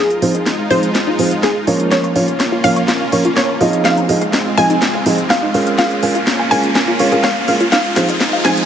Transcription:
Already playing: F1, riser
0.00 G#3 D#4 F4 G#4
0.10 closed hi-hat
0.22 F3 C4 D#4 G#4 C5 F5, open hi-hat
0.35 D#1 D#4, closed hi-hat
0.46 snare, closed hi-hat
0.59 F5
0.71 F1 F3 C4 D#4 G#4 C5, open hi-hat
0.83 closed hi-hat
0.95 F5, snare, closed hi-hat
1.07 G1 D#4
1.19 F3 C4 D#4 G#4 C5, open hi-hat
1.31 F5, closed hi-hat
1.43 F1 D#4 G#4, snare, closed hi-hat
1.67 F1 F3 A#3 C#4 A#4 C#5 F5, open hi-hat
1.80 D#4, closed hi-hat
1.91 F1 A#3 C#4 F4 C#5, snare, closed hi-hat
2.04 C#6, closed hi-hat
2.16 F3 A#3 C#4 F4 A#4 C#5, open hi-hat
2.28 F1, closed hi-hat
2.40 C#6, snare, closed hi-hat
2.52 F4
2.64 C2 F3 A#3 C#4 A#4 C#5 F5, open hi-hat
2.76 C#6, closed hi-hat
2.88 F4, snare, closed hi-hat
3.01 F1
3.12 F3 A#3 C#4 A#4 C#5 C#6, open hi-hat
3.25 F4, closed hi-hat
3.36 G1 C#5, snare, closed hi-hat
3.49 C#6
3.61 G1 F3 C4 D#4 F4 G#4 D#5, open hi-hat
3.73 closed hi-hat
3.85 F1 G#3 C4 F4 F5, snare, closed hi-hat
3.97 D#4, closed hi-hat
4.09 F3 C4 D#4 G#4 D#5, open hi-hat
4.22 D#1 F5, closed hi-hat
4.33 D#4, snare, closed hi-hat
4.57 F1 F3 C4 D#4 G#4 D#5 F5 G#5, open hi-hat
4.70 D#4, closed hi-hat
4.82 snare, closed hi-hat
4.94 G1 F5
5.06 F3 C4 D#4 G#4 D#5, open hi-hat
5.18 closed hi-hat
5.30 F1 F5, snare, closed hi-hat
5.43 D#4
5.54 F1 G#3 C#4 F4 A#4 F5, open hi-hat
5.67 F5, closed hi-hat
5.78 F1 A#3 C#4 F4 F5, snare, closed hi-hat
5.91 closed hi-hat
6.03 G#3 C#4 F4 A#4 F5 G#5, open hi-hat
6.15 F1 F4, closed hi-hat
6.27 snare, closed hi-hat
6.39 G#5
6.51 C2 G#3 C#4 F4 A#4 F5 G#5, open hi-hat
6.64 closed hi-hat
6.75 G#5, snare, closed hi-hat
6.88 F1 F4
6.99 G#3 C#4 F4 A#4 C#5 F5, open hi-hat
7.12 G#3 C#4 F4 G#4 A#4 F5, closed hi-hat
7.24 C2 C#5 F5, snare, closed hi-hat
7.48 F1 G#3 C#4 F4 A#4 F5, open hi-hat
7.60 F4, closed hi-hat
7.72 F1 G#3 D#4 F5, snare, closed hi-hat, cabasa
7.85 closed hi-hat
7.96 F3 C4 D#4 G#4 C5 F5, snare, open hi-hat, cabasa
8.09 D#1 D#4, closed hi-hat, cabasa
8.20 snare, closed hi-hat, cabasa
8.33 F5
8.45 F3 C4 D#4 G#4 C5 G#5, snare, open hi-hat, cabasa
8.57 closed hi-hat, cabasa

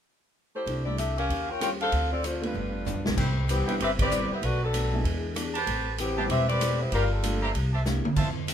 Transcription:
0.55 A3 E4 G4 C5
0.66 C2 C3 A3 D4 E4, ride
0.85 G3 A3 D4 E4 G4 D5
0.97 C3 A3 D4 E4 G4 A4 E5, hi-hat pedal, ride
1.18 C#4 G4 A#4 F5, ride
1.29 D#2 D#3 C#4 G4 C5, ride
1.50 F4 A#4 C#5 G5
1.60 D#3 G3 C4 C#4 F4 G4 A#4 C5 C#5 G5, cross-stick, hi-hat pedal, ride
1.81 D4 A4 C5 F5, ride
1.92 D2 D3 A3 C4 F4, ride
2.13 C4 F4 A4 D5
2.23 D3 A3 C4 D4 F4 C5, hi-hat pedal, ride
2.42 G3 A3 B3 D4 F4 B4, ride
2.53 G1 G2 F3 B3 D4, floor tom
2.85 G2 F3 B3 D4, floor tom, hi-hat pedal
2.97 D2
3.04 B1 C3 G3 B3 D4 E4, snare
3.16 C2 C3 G3 B3 E4 B4 C5 G5, kick, crash
3.48 C3 E3 G3 B3 C4 E4 G4, hi-hat pedal, ride
3.67 G3 B3 D4 E4 B4 C5 G5, muted upright bass stroke, ride
3.79 G1 C3 G3 B3 C4 E4 G4 B4, ride
3.83 E5
3.99 C4 G4 B4 D5, kick, ride
4.10 C3 G3 B3 E4, hi-hat pedal
4.30 G3 B3 E4 C5, muted upright bass stroke
4.42 B1 B2 F#3 A3 D4 F#4 B4, ride
4.63 F#3 B3 D4 A4
4.73 B2 F#3 A3 D4, hi-hat pedal, ride
4.93 G#3 B3 D4 E4
5.04 E2 E3 B3 D4 G#4, ride
5.35 E3 B3 D4 G#4, cross-stick, hi-hat pedal, ride
5.54 G4 B4 C5 A5, ride
5.67 A1 A3 C4 G4 B4, ride
5.98 E3 A3 B3 C4 G4 B4, hi-hat pedal, ride
6.17 G3 B3 C4 E4 G4 B4 C5 A5
6.29 E1 A3 C4 G4 B4 E5, ride
6.49 C4 G4 B4 D5, ride
6.60 A3 C4 G4 B4, cross-stick, hi-hat pedal, ride
6.81 G3 B3 E4 C5
6.92 G1 G2 F3 G3 A#3 D4 F4 G4 A#4 D5 F5 A#5, ride
7.12 G3 D4 F4 A4
7.22 G2 F3 A3 A#3 D4 F4, hi-hat pedal, ride
7.42 G4 C5 E5 A#5
7.55 C2 C3 G3 A#3 E4, ride
7.73 G4 C5 E5 A5
7.85 C3 G3 A#3 D4 E4, snare, hi-hat pedal
8.05 muted upright bass stroke, high tom
8.16 F2 F3 A3 C4 E4 F4 C5 E5 A5, kick, crash
8.47 F3 A3 C4 E4, hi-hat pedal, ride

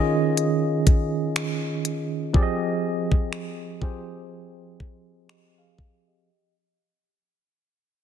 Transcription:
Already playing: D#3 C#4 F4 G#4 D#5
0.37 closed hi-hat
0.87 kick, closed hi-hat
1.36 finger snap, closed hi-hat
1.85 closed hi-hat
2.33 F3 C4 G4 G#4 D5, kick
2.43 D#5
3.12 kick
3.33 finger snap
3.81 F3 C4 G4 G#4 C5, kick
4.80 kick
5.29 G4 D#5, finger snap
5.58 G#4 F5
5.78 kick
6.08 G4 D#5

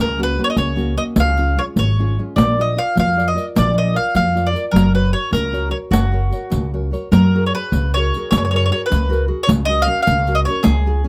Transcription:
Already playing: C#2
0.00 C#3 A#4
0.18 A#3 C#4 F#4
0.23 B4
0.39 A#3 C#4 F#4
0.44 C#5
0.50 D#5
0.56 C#2 C#3 C#5, riq
0.76 A#3 C#4 F#4, riq
0.97 A#3 C#4 F#4 D#5, riq
1.16 C#2 C#3, riq
1.20 F5
1.37 G#3 C#4 F4, riq
1.57 G#3 C#4 F4 C#5
1.76 G#1 G#3 C#5, riq
1.99 G#3 C#4 F4
2.19 G#3 C#4 F4
2.36 A#1 A#3 D5, riq
2.59 F4 A#4 D5 D#5
2.76 F4 A#4 D5 F5
2.95 F2 F3, riq
3.00 F5
3.16 F4 A#4 D5, riq
3.28 D#5
3.35 F4 A#4 D5, riq
3.55 A#1 F3 D5, riq
3.73 F4 A#4 D5
3.78 D#5
3.93 F4 A#4 D5 F5
4.15 F2 F3 F5, riq
4.35 F4 A#4 D5, riq
4.46 D5
4.53 F4 A#4 D5, riq
4.71 F#1 F#3 A#4
4.76 riq
4.94 F#4 A#4 B4 C#5
5.13 F#4 A#4 C#5
5.31 C#2 C#3 A#4, riq
5.53 F#4 A#4 C#5, riq
5.69 F#4 A#4 C#5
5.91 F#1 C#3 F#4, riq
6.12 F#4 A#4 C#5
6.31 F#4 A#4 C#5, riq
6.50 C#2 C#3, riq
6.74 F#4 A#4 C#5
6.91 F#4 A#4 C#5, riq
7.12 F#2 F#3 A#4, riq
7.35 F#4 G#4 A#4
7.46 C#5
7.54 F#4 G#4 B4 C#5
7.72 C#2 C#3, riq
7.94 F#4 G#4 A#4 C#5, riq
8.14 F#4 G#4 A#4, riq
8.31 F#2 C#3 C#5, riq
8.38 C#5
8.45 C#5
8.51 F#4 G#4 A#4 C#5
8.56 C#5
8.66 C#5
8.71 F#4 G#4 A#4 C#5
8.86 B4
8.90 C#2 C#3, riq
9.09 F#4 G#4 A#4, riq
9.28 F#4 G#4 A#4
9.43 C#5
9.47 C#2 C#3, riq
9.65 C#4 F#4 A#4 D#5
9.82 F5
9.87 C#4 F#4 A#4
10.02 F5
10.07 C#2 C#3, riq
10.27 C#4 F#4 A#4, riq
10.35 D#5
10.45 C#4 F#4 A#4 C#5, riq
10.63 C#2 C#3 G#4, riq
10.86 C#4 F4 G#4
11.04 C#4 F4

